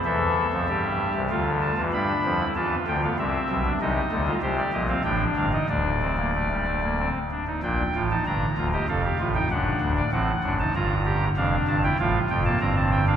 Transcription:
<<
  \new Staff \with { instrumentName = "Pipe organ" } { \time 3/4 \key a \phrygian \tempo 4 = 96 << { e''2 f''8 a''8 | b''4 a''8 g''16 f''16 e''4 | \key g \minor ees''4 c''16 d''16 ees''16 f''16 g''8 f''16 ees''16 | d''2~ d''8 r8 |
g''8. a''16 bes''8. ees''16 f''8. g''16 | fis''8. d''16 fis''8. a''16 bes''4 | f''8 a''16 g''16 f''8 g''16 a''16 bes''16 a''16 g''16 f''16 | } \\ { a'4 g'4 f'4 | d'8. e'16 f'8. b16 c'8. d'16 | ees'8. f'16 g'8. c'16 d'8. ees'16 | d'8 c'16 bes16 a16 g16 a16 bes16 c'8 d'16 ees'16 |
d'8 f'16 ees'16 d'8 f'16 g'16 a'16 g'16 f'16 ees'16 | d'4 c'8 d'16 ees'16 f'8 g'8 | d'8. e'16 f'8. bes16 c'8. d'16 | } >> }
  \new Staff \with { instrumentName = "Pipe organ" } { \clef bass \time 3/4 \key a \phrygian <e, e>8. <f, f>16 <g, g>8. <c, c>16 <d, d>8. <e, e>16 | <g, g>8 <f, f>8 <e, e>8 <d, d>8 <c, c>8 <b,, b,>8 | \key g \minor <c, c>8 <d, d>8 <c, c>8 <bes,, bes,>8 <a,, a,>8 <g,, g,>8 | <d,, d,>2~ <d,, d,>8 r8 |
<bes,, bes,>8 <a,, a,>8 <g,, g,>8 <d,, d,>8 <f,, f,>8 <a,, a,>8 | <fis,, fis,>8 <d,, d,>8 <a,, a,>8 <fis,, fis,>8 <g,, g,>4 | <f,, f,>8 <g,, g,>8 <a,, a,>8 <f,, f,>8 <g,, g,>4 | }
>>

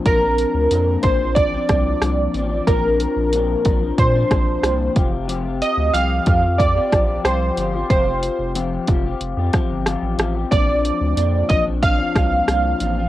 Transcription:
<<
  \new Staff \with { instrumentName = "Synth keys" } { \time 4/4 \key bes \major \tempo 4 = 92 bes'4. c''8 d''2 | bes'2 c''4. r8 | r8 ees''8 f''4 d''4 c''4 | c''4 r2. |
d''4. ees''8 f''2 | }
  \new Staff \with { instrumentName = "Clean electric guitar" } { \time 4/4 \key bes \major <bes, f c' d'>16 <f c' d'>8. <bes, f c' d'>8 <bes, f c' d'>16 <f c' d'>8 <f c' d'>16 <bes, f c' d'>8 <bes, f c' d'>8 <bes, f c' d'>16 <f c' d'>16 | <bes, f c' d'>16 <f c' d'>8. <bes, f c' d'>8 <bes, f c' d'>16 <f c' d'>8 <f c' d'>16 <bes, f c' d'>8 <bes, f c' d'>8 <f c' f' g'>16 <c' f' g'>16 | <f c' f' g'>16 <c' f' g'>8. <f c' f' g'>8 <f c' f' g'>16 <c' f' g'>8 <c' f' g'>16 <f c' f' g'>8 <f c' f' g'>8 <f c' f' g'>16 <c' f' g'>16 | <f c' f' g'>16 <c' f' g'>8. <f c' f' g'>8 <f c' f' g'>16 <c' f' g'>8 <c' f' g'>16 <f c' f' g'>8 <f c' f' g'>8 <f c' f' g'>16 <c' f' g'>16 |
<bes, f c' d'>16 <f c' d'>8. <bes, f c' d'>8 <bes, f c' d'>16 <f c' d'>8 <f c' d'>16 <bes, f c' d'>8 <bes, f c' d'>8 <bes, f c' d'>16 <f c' d'>16 | }
  \new Staff \with { instrumentName = "Analog synth bass" } { \clef bass \time 4/4 \key bes \major bes,,8. d,16 f,8 bes,,4 c,8 c,8 a,,8 | bes,,8. bes,,8. bes,,8 bes,8 bes,,8 c,8 f,,8~ | f,,8. d,16 c,8 f,4 bes,,8 c,8 g,,8 | f,,8. f,,8. f,,8 f,,16 f,16 r16 g,,8 a,,16 a,,8 |
bes,,8. d,16 f,8 bes,,4 c,8 c,8 a,,8 | }
  \new DrumStaff \with { instrumentName = "Drums" } \drummode { \time 4/4 <hh bd>8 hh8 hh8 <hh bd>8 <hh bd>8 <hh bd ss>8 <hh ss>8 hh8 | <hh bd>8 hh8 hh8 <hh bd>8 <hh bd>8 <hh bd ss>8 <hh ss>8 <hh bd>8 | hh8 hh8 hh8 <hh bd>8 <hh bd>8 <hh bd ss>8 <hh ss>8 hh8 | <hh bd>8 hh8 hh8 <hh bd>8 hh8 <hh bd ss>8 <hh ss>8 <hh ss>8 |
<hh bd>8 hh8 hh8 <hh bd>8 <hh bd>8 <hh bd ss>8 <hh ss>8 hh8 | }
>>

